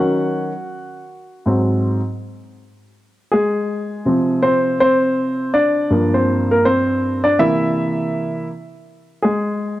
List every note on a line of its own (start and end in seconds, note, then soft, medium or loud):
0.00 0.50 D#3 medium
0.00 0.51 F#3 soft
0.00 0.51 C#4 medium
0.00 1.80 F#4 medium
0.00 1.80 F#5 medium
1.46 1.98 G#2 medium
1.46 1.99 F#3 soft
1.46 1.99 C4 medium
3.32 4.40 G#3 medium
3.32 4.46 G#4 medium
4.05 5.87 C3 soft
4.05 5.87 F3 medium
4.05 4.42 C4 medium
4.42 4.78 C4 medium
4.42 4.77 C5 medium
4.80 5.51 C4 medium
4.80 5.50 C5 loud
5.54 6.09 D4 medium
5.54 6.15 D5 medium
5.90 7.35 G2 medium
5.90 7.35 F3 medium
5.90 6.50 A#3 medium
6.14 6.48 C4 medium
6.14 6.52 C5 medium
6.51 6.65 A#3 medium
6.51 6.66 A#4 medium
6.65 7.21 C4 medium
6.65 7.21 C5 loud
7.24 7.38 D4 medium
7.24 7.39 D5 medium
7.39 8.46 C3 medium
7.39 8.46 E3 medium
7.39 8.47 A#3 medium
7.39 8.47 E4 medium
7.39 8.46 E5 loud
9.22 9.80 G#3 medium
9.22 9.80 G#4 medium